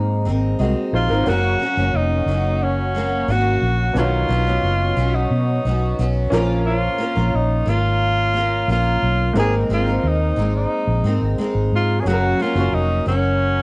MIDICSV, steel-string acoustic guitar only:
0, 0, Header, 1, 2, 480
1, 0, Start_track
1, 0, Key_signature, 6, "major"
1, 0, Tempo, 674157
1, 904, Time_signature, 4, 2, 24, 8
1, 9697, End_track
2, 0, Start_track
2, 0, Title_t, "Steel-string acoustic guitar"
2, 0, Program_c, 0, 25
2, 0, Note_on_c, 0, 56, 63
2, 0, Note_on_c, 0, 60, 65
2, 0, Note_on_c, 0, 63, 66
2, 0, Note_on_c, 0, 70, 72
2, 171, Note_off_c, 0, 56, 0
2, 178, Note_off_c, 0, 60, 0
2, 180, Note_on_c, 0, 56, 63
2, 186, Note_off_c, 0, 63, 0
2, 186, Note_on_c, 0, 60, 67
2, 194, Note_on_c, 0, 63, 68
2, 200, Note_off_c, 0, 70, 0
2, 203, Note_on_c, 0, 70, 71
2, 411, Note_off_c, 0, 56, 0
2, 417, Note_off_c, 0, 60, 0
2, 419, Note_on_c, 0, 56, 58
2, 425, Note_off_c, 0, 63, 0
2, 426, Note_on_c, 0, 60, 63
2, 430, Note_off_c, 0, 70, 0
2, 433, Note_on_c, 0, 63, 69
2, 439, Note_on_c, 0, 70, 73
2, 767, Note_off_c, 0, 70, 0
2, 776, Note_on_c, 0, 70, 58
2, 782, Note_off_c, 0, 56, 0
2, 782, Note_off_c, 0, 63, 0
2, 785, Note_off_c, 0, 60, 0
2, 791, Note_on_c, 0, 63, 54
2, 806, Note_on_c, 0, 60, 46
2, 897, Note_on_c, 0, 42, 74
2, 900, Note_off_c, 0, 70, 0
2, 900, Note_on_c, 0, 49, 73
2, 904, Note_off_c, 0, 60, 0
2, 905, Note_on_c, 0, 54, 83
2, 906, Note_on_c, 0, 58, 79
2, 908, Note_off_c, 0, 63, 0
2, 910, Note_on_c, 0, 61, 83
2, 913, Note_on_c, 0, 66, 86
2, 1129, Note_off_c, 0, 54, 0
2, 1137, Note_on_c, 0, 54, 59
2, 1140, Note_off_c, 0, 42, 0
2, 1141, Note_off_c, 0, 58, 0
2, 1142, Note_off_c, 0, 49, 0
2, 1147, Note_off_c, 0, 61, 0
2, 1148, Note_off_c, 0, 66, 0
2, 1149, Note_on_c, 0, 58, 59
2, 1154, Note_on_c, 0, 61, 70
2, 1162, Note_on_c, 0, 66, 70
2, 1252, Note_off_c, 0, 66, 0
2, 1259, Note_off_c, 0, 61, 0
2, 1260, Note_on_c, 0, 66, 56
2, 1261, Note_off_c, 0, 54, 0
2, 1267, Note_off_c, 0, 58, 0
2, 1267, Note_on_c, 0, 61, 59
2, 1276, Note_on_c, 0, 58, 54
2, 1288, Note_on_c, 0, 54, 47
2, 1614, Note_off_c, 0, 54, 0
2, 1621, Note_off_c, 0, 58, 0
2, 1622, Note_off_c, 0, 66, 0
2, 1622, Note_on_c, 0, 54, 56
2, 1625, Note_off_c, 0, 61, 0
2, 1629, Note_on_c, 0, 58, 64
2, 1637, Note_on_c, 0, 61, 62
2, 1646, Note_on_c, 0, 66, 70
2, 2095, Note_off_c, 0, 54, 0
2, 2098, Note_off_c, 0, 58, 0
2, 2098, Note_on_c, 0, 54, 63
2, 2107, Note_on_c, 0, 58, 71
2, 2112, Note_off_c, 0, 61, 0
2, 2115, Note_on_c, 0, 61, 66
2, 2118, Note_off_c, 0, 66, 0
2, 2120, Note_on_c, 0, 66, 71
2, 2329, Note_off_c, 0, 54, 0
2, 2337, Note_off_c, 0, 58, 0
2, 2338, Note_on_c, 0, 54, 66
2, 2344, Note_off_c, 0, 61, 0
2, 2345, Note_on_c, 0, 58, 55
2, 2352, Note_off_c, 0, 66, 0
2, 2352, Note_on_c, 0, 61, 63
2, 2360, Note_on_c, 0, 66, 69
2, 2818, Note_on_c, 0, 47, 69
2, 2824, Note_off_c, 0, 58, 0
2, 2825, Note_on_c, 0, 51, 88
2, 2827, Note_off_c, 0, 54, 0
2, 2829, Note_on_c, 0, 54, 76
2, 2830, Note_on_c, 0, 59, 84
2, 2833, Note_off_c, 0, 61, 0
2, 2836, Note_on_c, 0, 61, 77
2, 3044, Note_off_c, 0, 54, 0
2, 3052, Note_on_c, 0, 54, 63
2, 3056, Note_off_c, 0, 59, 0
2, 3060, Note_off_c, 0, 47, 0
2, 3064, Note_off_c, 0, 51, 0
2, 3064, Note_off_c, 0, 61, 0
2, 3064, Note_on_c, 0, 59, 69
2, 3072, Note_on_c, 0, 61, 62
2, 3077, Note_off_c, 0, 66, 0
2, 3080, Note_on_c, 0, 66, 70
2, 3174, Note_off_c, 0, 61, 0
2, 3177, Note_off_c, 0, 54, 0
2, 3181, Note_off_c, 0, 59, 0
2, 3183, Note_on_c, 0, 61, 55
2, 3189, Note_on_c, 0, 59, 55
2, 3191, Note_off_c, 0, 66, 0
2, 3199, Note_on_c, 0, 54, 53
2, 3528, Note_off_c, 0, 54, 0
2, 3535, Note_off_c, 0, 59, 0
2, 3537, Note_on_c, 0, 54, 66
2, 3543, Note_off_c, 0, 61, 0
2, 3544, Note_on_c, 0, 59, 66
2, 3554, Note_on_c, 0, 61, 64
2, 3558, Note_on_c, 0, 66, 70
2, 4016, Note_off_c, 0, 54, 0
2, 4023, Note_off_c, 0, 59, 0
2, 4025, Note_on_c, 0, 54, 66
2, 4030, Note_off_c, 0, 66, 0
2, 4034, Note_on_c, 0, 59, 63
2, 4040, Note_off_c, 0, 61, 0
2, 4043, Note_on_c, 0, 61, 67
2, 4050, Note_on_c, 0, 66, 67
2, 4255, Note_off_c, 0, 54, 0
2, 4260, Note_off_c, 0, 59, 0
2, 4263, Note_on_c, 0, 54, 66
2, 4268, Note_on_c, 0, 59, 72
2, 4269, Note_off_c, 0, 61, 0
2, 4274, Note_off_c, 0, 66, 0
2, 4278, Note_on_c, 0, 61, 78
2, 4283, Note_on_c, 0, 66, 71
2, 4498, Note_on_c, 0, 46, 77
2, 4501, Note_off_c, 0, 61, 0
2, 4502, Note_off_c, 0, 54, 0
2, 4505, Note_off_c, 0, 59, 0
2, 4505, Note_on_c, 0, 58, 84
2, 4507, Note_on_c, 0, 53, 88
2, 4510, Note_off_c, 0, 66, 0
2, 4510, Note_on_c, 0, 61, 93
2, 4513, Note_on_c, 0, 70, 93
2, 4515, Note_on_c, 0, 65, 93
2, 4970, Note_off_c, 0, 58, 0
2, 4972, Note_on_c, 0, 58, 69
2, 4975, Note_off_c, 0, 61, 0
2, 4980, Note_off_c, 0, 46, 0
2, 4981, Note_off_c, 0, 65, 0
2, 4983, Note_on_c, 0, 61, 67
2, 4984, Note_off_c, 0, 53, 0
2, 4990, Note_on_c, 0, 65, 69
2, 4995, Note_off_c, 0, 70, 0
2, 4998, Note_on_c, 0, 70, 68
2, 5086, Note_off_c, 0, 70, 0
2, 5095, Note_on_c, 0, 70, 58
2, 5096, Note_off_c, 0, 65, 0
2, 5097, Note_off_c, 0, 58, 0
2, 5101, Note_off_c, 0, 61, 0
2, 5105, Note_on_c, 0, 65, 56
2, 5109, Note_on_c, 0, 61, 49
2, 5122, Note_on_c, 0, 58, 52
2, 5443, Note_off_c, 0, 58, 0
2, 5452, Note_on_c, 0, 58, 62
2, 5455, Note_off_c, 0, 61, 0
2, 5458, Note_off_c, 0, 70, 0
2, 5459, Note_off_c, 0, 65, 0
2, 5463, Note_on_c, 0, 61, 64
2, 5467, Note_on_c, 0, 65, 72
2, 5476, Note_on_c, 0, 70, 70
2, 5935, Note_off_c, 0, 58, 0
2, 5938, Note_on_c, 0, 58, 65
2, 5943, Note_off_c, 0, 61, 0
2, 5945, Note_off_c, 0, 65, 0
2, 5950, Note_on_c, 0, 61, 66
2, 5959, Note_on_c, 0, 65, 69
2, 5963, Note_off_c, 0, 70, 0
2, 5966, Note_on_c, 0, 70, 73
2, 6180, Note_off_c, 0, 58, 0
2, 6186, Note_off_c, 0, 61, 0
2, 6189, Note_on_c, 0, 58, 58
2, 6191, Note_off_c, 0, 65, 0
2, 6194, Note_off_c, 0, 70, 0
2, 6196, Note_on_c, 0, 61, 60
2, 6202, Note_on_c, 0, 65, 66
2, 6214, Note_on_c, 0, 70, 72
2, 6658, Note_off_c, 0, 58, 0
2, 6659, Note_off_c, 0, 61, 0
2, 6661, Note_on_c, 0, 56, 74
2, 6662, Note_on_c, 0, 60, 82
2, 6668, Note_off_c, 0, 65, 0
2, 6668, Note_off_c, 0, 70, 0
2, 6671, Note_on_c, 0, 63, 82
2, 6671, Note_on_c, 0, 70, 85
2, 6898, Note_off_c, 0, 56, 0
2, 6902, Note_off_c, 0, 60, 0
2, 6906, Note_off_c, 0, 63, 0
2, 6906, Note_off_c, 0, 70, 0
2, 6907, Note_on_c, 0, 56, 68
2, 6914, Note_on_c, 0, 60, 66
2, 6922, Note_on_c, 0, 63, 68
2, 6930, Note_on_c, 0, 70, 73
2, 7013, Note_off_c, 0, 70, 0
2, 7022, Note_on_c, 0, 70, 58
2, 7024, Note_off_c, 0, 56, 0
2, 7024, Note_off_c, 0, 63, 0
2, 7028, Note_off_c, 0, 60, 0
2, 7032, Note_on_c, 0, 63, 55
2, 7045, Note_on_c, 0, 60, 46
2, 7376, Note_off_c, 0, 60, 0
2, 7378, Note_on_c, 0, 56, 63
2, 7382, Note_off_c, 0, 70, 0
2, 7384, Note_on_c, 0, 60, 58
2, 7387, Note_off_c, 0, 63, 0
2, 7395, Note_on_c, 0, 63, 65
2, 7399, Note_on_c, 0, 70, 71
2, 7853, Note_off_c, 0, 56, 0
2, 7862, Note_on_c, 0, 56, 61
2, 7863, Note_off_c, 0, 60, 0
2, 7869, Note_off_c, 0, 63, 0
2, 7871, Note_on_c, 0, 60, 65
2, 7878, Note_on_c, 0, 63, 63
2, 7880, Note_off_c, 0, 70, 0
2, 7883, Note_on_c, 0, 70, 69
2, 8096, Note_off_c, 0, 56, 0
2, 8103, Note_off_c, 0, 60, 0
2, 8104, Note_on_c, 0, 56, 68
2, 8110, Note_off_c, 0, 63, 0
2, 8112, Note_on_c, 0, 60, 70
2, 8113, Note_off_c, 0, 70, 0
2, 8122, Note_on_c, 0, 63, 74
2, 8125, Note_on_c, 0, 70, 69
2, 8583, Note_off_c, 0, 56, 0
2, 8587, Note_off_c, 0, 60, 0
2, 8587, Note_on_c, 0, 42, 74
2, 8589, Note_on_c, 0, 49, 76
2, 8592, Note_off_c, 0, 63, 0
2, 8593, Note_on_c, 0, 58, 84
2, 8595, Note_on_c, 0, 54, 80
2, 8598, Note_off_c, 0, 70, 0
2, 8600, Note_on_c, 0, 61, 80
2, 8601, Note_on_c, 0, 66, 77
2, 8817, Note_off_c, 0, 54, 0
2, 8823, Note_off_c, 0, 58, 0
2, 8824, Note_off_c, 0, 42, 0
2, 8825, Note_on_c, 0, 54, 66
2, 8826, Note_off_c, 0, 49, 0
2, 8831, Note_off_c, 0, 61, 0
2, 8832, Note_off_c, 0, 66, 0
2, 8832, Note_on_c, 0, 58, 63
2, 8842, Note_on_c, 0, 61, 63
2, 8849, Note_on_c, 0, 66, 66
2, 8932, Note_off_c, 0, 66, 0
2, 8940, Note_off_c, 0, 61, 0
2, 8941, Note_on_c, 0, 66, 61
2, 8944, Note_off_c, 0, 54, 0
2, 8945, Note_off_c, 0, 58, 0
2, 8949, Note_on_c, 0, 61, 50
2, 8954, Note_on_c, 0, 58, 49
2, 8965, Note_on_c, 0, 54, 51
2, 9288, Note_off_c, 0, 54, 0
2, 9297, Note_on_c, 0, 54, 56
2, 9298, Note_off_c, 0, 58, 0
2, 9301, Note_off_c, 0, 66, 0
2, 9305, Note_off_c, 0, 61, 0
2, 9306, Note_on_c, 0, 58, 56
2, 9315, Note_on_c, 0, 61, 67
2, 9321, Note_on_c, 0, 66, 65
2, 9697, Note_off_c, 0, 54, 0
2, 9697, Note_off_c, 0, 58, 0
2, 9697, Note_off_c, 0, 61, 0
2, 9697, Note_off_c, 0, 66, 0
2, 9697, End_track
0, 0, End_of_file